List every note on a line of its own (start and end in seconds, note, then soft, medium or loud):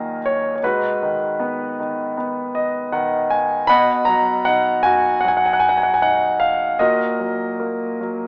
0.00 0.58 D#2 medium
0.00 0.59 A#2 soft
0.00 0.64 D#3 soft
0.00 0.19 F#3 soft
0.00 0.58 F#4 soft
0.00 0.58 A#4 medium
0.00 0.64 D#5 medium
0.00 0.64 F5 medium
0.26 0.54 C#5 medium
0.55 0.62 C#5 soft
0.63 3.66 G#2 medium
0.63 2.15 D#4 soft
0.63 2.15 F#4 soft
0.63 2.14 B4 medium
1.02 1.78 D#3 soft
1.40 2.16 B3 medium
1.79 2.91 D#3 soft
2.17 3.65 B3 soft
2.55 2.90 D#5 medium
2.92 3.67 D#3 medium
2.92 3.28 F#5 medium
3.31 3.66 G#5 medium
3.67 6.75 B2 medium
3.67 5.20 D#5 medium
3.67 4.44 F#5 medium
3.67 4.04 B5 loud
4.05 5.23 F#3 soft
4.05 4.42 A#5 medium
4.45 5.98 D#4 medium
4.45 4.86 F#5 medium
4.83 6.36 F#4 medium
4.83 5.20 G#5 medium
5.20 6.75 F#3 medium
5.20 5.30 F#5 medium
5.28 5.38 G#5 medium
5.37 5.46 F#5 medium
5.46 5.54 G#5 medium
5.53 5.62 F#5 medium
5.59 5.69 G#5 medium
5.69 5.78 F#5 medium
5.78 5.86 G#5 medium
5.83 5.93 F#5 medium
5.94 6.02 G#5 medium
6.02 6.77 D#4 medium
6.02 6.41 F#5 medium
6.40 6.76 F5 medium
6.79 8.27 A#2 medium
6.79 8.27 F#4 soft
6.79 8.27 A#4 medium
6.79 8.27 D#5 medium
7.20 7.99 F#3 soft
7.60 8.27 A#3 soft
8.01 8.27 F#3 soft